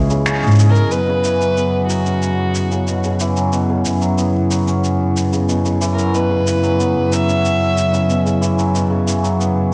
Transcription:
Already playing: C#3 E3 F#3 G#3 B3 C#4 E4 G#4
0.10 C#3, shaker
0.26 C#4, finger snap, shaker
0.43 G#2 G#4, shaker
0.47 shaker
0.51 shaker
0.55 shaker
0.59 G#4, shaker
0.70 A#4
0.75 G#4, shaker
0.91 F#2 B2 B4, shaker
1.03 F#3
1.08 C#3
1.24 E3 B3, shaker
1.40 F#3, shaker
1.57 B3, shaker
1.89 F#3 F#4, shaker
2.05 C#4, shaker
2.22 shaker
2.55 shaker
2.71 C#3, shaker
2.87 B2, shaker
3.04 C#3, shaker
3.20 E3, shaker
3.36 F#3, shaker
3.53 B2, shaker
3.69 C#3
3.85 E3, shaker
4.01 F#3, shaker
4.18 B3, shaker
4.50 F#3, shaker
4.67 C#4, shaker
4.84 shaker
5.17 shaker
5.32 C#3, shaker
5.49 B2, shaker
5.65 C#3, shaker
5.81 E3, shaker
5.93 A#4
5.98 F#3, shaker
6.14 B2 B4, shaker
6.30 C#3
6.46 E3, shaker
6.63 F#3, shaker
6.79 B3, shaker
7.12 F#3 E5, shaker
7.28 C#4, shaker
7.45 shaker
7.78 shaker
7.93 C#3, shaker
8.09 B2, shaker
8.25 C#3, shaker
8.41 E3, shaker
8.58 F#3, shaker
8.75 B2, shaker
8.90 C#3
9.06 E3, shaker
9.23 F#3, shaker
9.39 B3, shaker

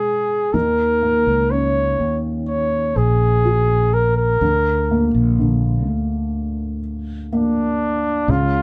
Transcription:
Already playing: B2 G#3 G#4
0.54 D#2 D#3 A#4
1.02 A#3
1.27 C#2
1.51 C#4 C#5
2.00 D#2
2.47 C#5
2.96 A#1 G#4
3.45 F#4
3.94 A#4
4.17 A#4
4.41 D2 D3
4.91 A#3
5.14 A#1
5.39 D3
5.87 D2
7.32 A#3 D4
8.28 C#2 C#3 F4

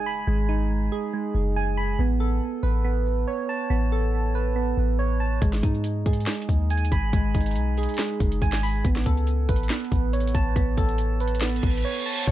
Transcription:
Already playing: G#3 G#4 G#5, impact
0.06 B5
0.27 G#1 G#3
0.49 D#4
0.92 G#4
1.13 G#3
1.35 F#1
1.56 G#5
1.77 B5
1.99 A1 B3
2.20 A4
2.63 A1 B4
2.85 B3
3.28 C#5
3.49 A5
3.70 A1 B3
3.92 A4
4.35 B4
4.56 B3
4.77 A1
4.99 C#5
5.20 A5
5.42 G#1 G#3, kick, closed hi-hat
5.53 snare
5.63 G#2 D#4, kick, closed hi-hat
5.75 closed hi-hat
5.84 closed hi-hat
6.06 G#2 G#4, kick, closed hi-hat
6.13 closed hi-hat
6.20 closed hi-hat
6.27 G#3, snare, clap, closed hi-hat
6.35 closed hi-hat
6.42 closed hi-hat
6.49 D#2, kick, closed hi-hat
6.70 G#5, closed hi-hat
6.77 closed hi-hat
6.85 closed hi-hat
6.92 G#1 B5, kick, closed hi-hat
7.13 G#1 G#3, kick, closed hi-hat
7.34 G#1 D#4, kick, closed hi-hat
7.40 closed hi-hat
7.46 closed hi-hat
7.51 closed hi-hat
7.55 B1, closed hi-hat
7.77 G#4, closed hi-hat
7.83 closed hi-hat
7.89 closed hi-hat
7.94 closed hi-hat
7.98 G#3, snare, clap, closed hi-hat
8.20 F#1, kick, closed hi-hat
8.32 closed hi-hat
8.42 G#1 G#5, kick, closed hi-hat
8.53 snare, clap
8.63 B5, open hi-hat
8.85 A1 B3, kick, closed hi-hat
8.96 snare
9.06 C#2 A4, kick, closed hi-hat
9.17 closed hi-hat
9.27 closed hi-hat
9.49 A1 B4, kick, closed hi-hat
9.56 closed hi-hat
9.63 closed hi-hat
9.70 B3, snare, clap, closed hi-hat
9.78 closed hi-hat
9.85 closed hi-hat
9.92 A1, kick, closed hi-hat
10.13 C#5, closed hi-hat
10.20 closed hi-hat
10.27 closed hi-hat
10.35 A1 A5, kick, closed hi-hat
10.56 A1 B3, kick, closed hi-hat
10.77 A1 A4, kick, closed hi-hat
10.89 closed hi-hat
10.98 closed hi-hat
11.20 B4, closed hi-hat
11.27 closed hi-hat
11.35 closed hi-hat
11.41 B3, snare, clap, closed hi-hat, reverse cymbal
11.49 closed hi-hat
11.56 closed hi-hat
11.63 A1, kick, closed hi-hat
11.70 closed hi-hat
11.77 closed hi-hat
11.85 C#5
12.06 A5
12.27 G#1 G#2 G#3 C#5, kick, closed hi-hat

